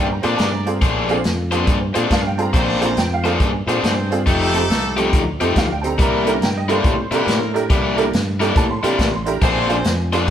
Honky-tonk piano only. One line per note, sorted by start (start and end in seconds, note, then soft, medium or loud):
0.00 0.11 G5 medium
0.12 0.39 A#5 medium
0.22 0.31 C4 medium
0.22 0.31 D4 medium
0.22 0.31 F4 medium
0.22 0.32 G#4 medium
0.37 0.40 A5 medium
0.42 0.82 A#5 medium
0.66 0.74 C4 medium
0.66 0.75 D4 medium
0.66 0.75 F4 medium
0.66 0.75 G#4 medium
1.09 1.17 C4 medium
1.09 1.18 D4 medium
1.09 1.18 F4 medium
1.09 1.18 G#4 loud
1.51 1.60 C4 medium
1.51 1.60 D4 medium
1.51 1.60 F4 medium
1.51 1.61 G#4 medium
1.94 2.03 C4 medium
1.94 2.03 D4 medium
1.94 2.03 F4 medium
1.94 2.03 G#4 medium
2.12 2.26 F5 medium
2.27 2.40 G5 medium
2.38 2.46 C4 medium
2.38 2.46 D4 medium
2.38 2.46 F4 medium
2.38 2.47 G#4 medium
2.38 2.42 A5 medium
2.42 2.83 A#5 loud
2.80 2.89 C4 medium
2.80 2.89 D4 medium
2.80 2.89 F4 medium
2.80 2.89 G#4 medium
2.85 2.98 A#5 medium
2.98 3.12 G5 loud
3.14 3.27 F5 medium
3.24 3.32 C4 medium
3.24 3.32 D4 medium
3.24 3.33 F4 medium
3.24 3.33 A#4 medium
3.68 3.75 C4 medium
3.68 3.76 D4 medium
3.68 3.76 F4 medium
3.68 3.76 G#4 medium
4.11 4.19 C4 medium
4.11 4.19 D4 medium
4.11 4.19 F4 medium
4.11 4.19 G#4 medium
4.54 4.62 C4 medium
4.54 4.62 D#4 medium
4.54 4.62 G4 medium
4.54 4.63 A4 loud
4.97 5.05 C4 medium
4.97 5.05 D#4 medium
4.97 5.05 G4 medium
4.97 5.05 A4 medium
5.40 5.48 C4 medium
5.40 5.48 D#4 medium
5.40 5.48 G4 medium
5.40 5.48 A4 medium
5.58 5.70 F5 medium
5.72 5.85 G5 medium
5.82 5.91 C4 medium
5.82 5.91 D#4 medium
5.82 5.91 G4 medium
5.82 5.92 A4 medium
5.82 5.85 A5 medium
5.87 6.27 A#5 medium
6.26 6.34 D4 medium
6.26 6.34 E4 medium
6.26 6.34 G4 medium
6.26 6.34 A#4 medium
6.26 6.42 A#5 medium
6.45 6.57 G5 medium
6.57 6.70 D#5 medium
6.68 6.76 D4 medium
6.68 6.76 E4 medium
6.68 6.77 G4 medium
6.68 6.77 A#4 medium
6.72 7.54 C5 medium
7.12 7.20 D4 medium
7.12 7.20 E4 medium
7.12 7.20 G4 medium
7.12 7.21 A#4 medium
7.54 7.62 D4 medium
7.54 7.62 E4 medium
7.54 7.62 G4 medium
7.54 7.63 A#4 loud
7.97 8.05 D4 medium
7.97 8.05 E4 medium
7.97 8.06 G4 medium
7.97 8.06 A#4 loud
8.40 8.48 D4 medium
8.40 8.48 E4 medium
8.40 8.49 G4 medium
8.40 8.49 A#4 medium
8.57 8.71 A5 loud
8.66 8.71 B5 medium
8.71 9.12 C6 medium
8.83 8.91 D4 medium
8.83 8.91 E4 medium
8.83 8.91 G4 medium
8.83 8.92 A#4 medium
9.15 9.28 C6 medium
9.26 9.34 D4 medium
9.26 9.34 E4 medium
9.26 9.34 G4 medium
9.26 9.35 A#4 medium
9.26 9.42 A#5 loud
9.43 9.69 C5 medium
9.43 10.30 G#5 loud
9.69 9.77 D4 medium
9.69 9.77 F4 medium
9.69 9.77 G#4 medium
9.69 9.78 C5 medium
10.13 10.20 D4 medium
10.13 10.21 F4 medium
10.13 10.21 G#4 medium
10.13 10.21 C5 medium